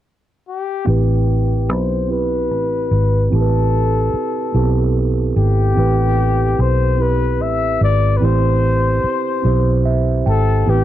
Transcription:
0.49 G4
0.85 A1 C4 E4 G4
0.90 B4
1.69 B1 C5
2.08 C4 E4 G4
2.12 B4
2.19 B4
2.51 A1
2.91 G#1
3.30 A1 C4 E4 G4
3.35 A4
3.41 B4
4.14 muted fingered electric bass stroke
4.52 B1 B3 E4 G4
4.56 C4 A4
5.36 G#1 G4
5.75 A1 C4 E4 G4
5.80 B4
6.59 B1 C5
6.97 C4 E4 G4
7.01 B4
7.40 A1 E5
7.81 G#1 D5
8.17 C4 B4
8.22 A1 E4 G4 C5
9.04 muted fingered electric bass stroke
9.42 B1 C4 E4 G4
9.47 C5
9.85 E5
10.26 G#1 A4 G5
10.65 A1 B3 E4 G4
10.69 C4 G4 B4

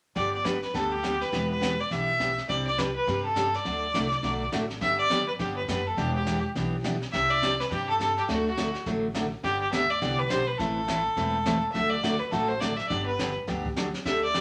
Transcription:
0.15 G1 D3 G3 B3 D4 G4 D5, brush sweep, kick, snare
0.34 D5
0.45 D3 G3 B3 D4 G4 B4, kick, snare, hi-hat pedal
0.62 B4, snare
0.74 D2 D3 G3 B3 D4 G4 A4, brush sweep, kick, snare
0.92 G4
1.03 D3 G3 B3 D4 G4, kick, snare, hi-hat pedal
1.21 B4, snare
1.32 E1 E3 B3 D4 G4, brush sweep, kick, snare
1.51 B4
1.61 E3 B3 D4 G4, kick, snare, hi-hat pedal
1.80 D5
1.90 B1 E3 B3 D4 G4 E5, brush sweep, kick, snare
2.19 E3 B3 D4 G4, kick, snare, hi-hat pedal
2.38 snare
2.48 C2 C3 G3 C4 D4 G4 D5, brush sweep, kick, snare
2.67 D5
2.78 C3 G3 C4 D4 G4 B4, kick, snare, hi-hat pedal
2.96 B4
3.07 G2 C3 G3 C4 D4 G4, brush sweep, kick, snare
3.25 A4
3.36 C3 G3 C4 D4 G4, kick, snare, hi-hat pedal
3.54 D5, snare
3.65 D2 D3 F#3 A3 D4 F#4, brush sweep, kick, snare
3.94 C2 D3 F#3 A3 D4 F#4, kick, snare, hi-hat pedal
4.12 snare
4.23 B1 D3 F#3 A3 D4 F#4, brush sweep, kick, snare
4.52 A1 D3 F#3 A3 D4 F#4, kick, snare, hi-hat pedal
4.70 snare
4.81 G1 D3 G3 B3 D4 G4 E5, brush sweep, kick, snare
4.99 D5
5.10 D3 G3 B3 D4 G4, kick, snare, hi-hat pedal
5.28 B4
5.39 G1 D3 G3 B3 D4 G4, brush sweep, kick, snare
5.56 B4
5.68 F#1 D3 G3 B3 D4 G4 B4, kick, snare, hi-hat pedal
5.87 A4
5.97 E1 E3 B3 D4 G4, brush sweep, kick, snare
6.15 G4
6.26 E3 B3 D4 G4, kick, snare, hi-hat pedal
6.55 B1 E3 B3 D4 G4, brush sweep, kick, snare
6.84 E3 B3 D4 G4, kick, snare, hi-hat pedal
7.02 snare
7.12 C2 C3 G3 C4 D4 G4 E5, brush sweep, kick, snare
7.30 D5
7.42 C3 G3 C4 D4 G4, kick, snare, hi-hat pedal
7.60 B4, snare
7.71 G2 C3 G3 C4 D4 G4, brush sweep, kick, snare
7.89 A4
7.99 C3 G3 C4 D4 G4 A4, kick, snare, hi-hat pedal
8.17 G4, snare
8.28 D2 D3 F#3 A3 D4 F#4, brush sweep, kick, snare
8.48 F#4
8.57 D3 F#3 A3 D4 F#4, kick, snare, hi-hat pedal
8.74 snare
8.86 A1 D3 F#3 A3 D4 F#4, brush sweep, kick, snare
9.14 D3 F#3 A3 D4 F#4, kick, snare, hi-hat pedal
9.43 G1 D3 G3 B3 D4 G4, brush sweep, kick, snare
9.61 G4
9.72 D2 D3 G3 B3 D4 G4 E5, kick, snare, hi-hat pedal
9.90 D5
10.01 C2 D3 G3 B3 D4 G4, brush sweep, kick, snare
10.19 B4
10.30 B1 D3 G3 B3 D4 G4 C5, kick, snare, hi-hat pedal
10.47 B4
10.58 A1 E3 A3 C4 E4 A4 B4, brush sweep, kick, snare
10.88 E3 A3 C4 E4 B4, kick, snare, hi-hat pedal
11.17 E1 E3 A3 C4 E4 B4, brush sweep, kick, snare
11.46 E3 A3 C4 E4 B4, kick, snare, hi-hat pedal
11.72 D2 D3 F#3 A3 D4 F#4 E5, brush sweep, kick, snare
11.90 D5
12.03 D3 F#3 A3 D4 F#4, kick, snare, hi-hat pedal
12.19 B4
12.31 A1 D3 F#3 A3 D4 F#4 A4, brush sweep, kick, snare
12.48 C5
12.60 D3 F#3 A3 D4 F#4 D5, kick, snare, hi-hat pedal
12.76 E5, snare
12.88 G1 D3 F#3 B3 D4 G4 D5, brush sweep, kick, snare
13.06 B4
13.19 D3 F#3 B3 D4 G4, kick, snare, hi-hat pedal
13.47 D2 D3 F#3 B3 D4 G4, brush sweep, kick, snare
13.65 kick
13.76 D3 F#3 B3 D4 G4, snare, hi-hat pedal
13.94 snare
14.05 D2 D3 G3 D4 G4 A4 E5, brush sweep, kick, snare
14.24 D5
14.34 D3 G3 D4 G4 A4, kick, snare, hi-hat pedal

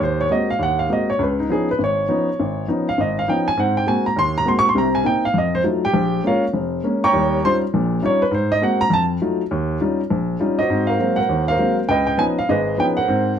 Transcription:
0.00 D#2 C5
0.21 C#5
0.30 G#3 A#3 C4 F#4 D#5
0.50 F5
0.59 D#2 F#5
0.79 F5
0.89 G#3 A#3 C4 F#4 D#5
1.10 C#5
1.19 C#2
1.23 B4
1.40 D#4
1.49 F3 B3 C#4 D#4 G#4
1.71 B4
1.79 G#1
1.84 C#5
2.08 F3 B3 C#4 D#4
2.40 G#1
2.68 F3 B3 C#4 D#4
2.89 F5
2.98 G#1 D#5
3.19 F5
3.28 F3 B3 C#4 D#4 G5
3.48 G#5
3.57 G#2 C4 F#5
3.77 G5
3.86 G#3 A#3 C4 F#4 G#5
4.06 A#5
4.16 D#2 C6
4.38 A#5
4.45 G#3 A#3 C4 F#4 C6
4.59 C#6
4.69 C6
4.75 C2 C3 A#5
4.95 G#5
5.04 A#3 C4 D#4 G5
5.25 F5
5.34 F2
5.38 D#5
5.55 C5
5.64 F#3 A3 D#4 F4
5.85 G4 G5
5.94 A#1
6.24 G#3 A#3 C#4 F4 A#4 C#5 F5
6.53 F1
6.84 G#3 A#3 C#4
7.04 C#5 G5 A#5 C#6
7.14 D#2 G3
7.44 G3 C#4 D#4 F4 C5 C6
7.74 A#1 A#2
8.03 G3 C#4 D#4 F4 C#5
8.22 B4
8.31 G#2 C5
8.52 D#5
8.61 G#3 A#3 C4 F#4 F#5
8.81 A#5
8.90 F2 A5
9.22 F#3 A3 D#4 F4
9.51 D#2
9.81 G3 C#4 D#4 F4
10.10 A#1
10.40 G3 C#4 D#4 F4
10.59 F#4 C5 D#5
10.70 G#2 C4
10.87 A#4 C5 F5
10.99 F#3 G#3 A#3 C4
11.16 A#4 C5 F#5
11.29 D#2 D#3
11.48 A#4 C5 F5
11.59 F#3 G#3 A#3 C4
11.89 C#2 B4 D#5 G5
12.07 G5
12.18 F3 B3 C#4 D#4 G#5
12.39 F5
12.49 G#1 G#4 B4 D#5
12.78 F3 B3 C#4 D#4 G5
12.97 A#4 C5 F#5
13.08 G#2 C4

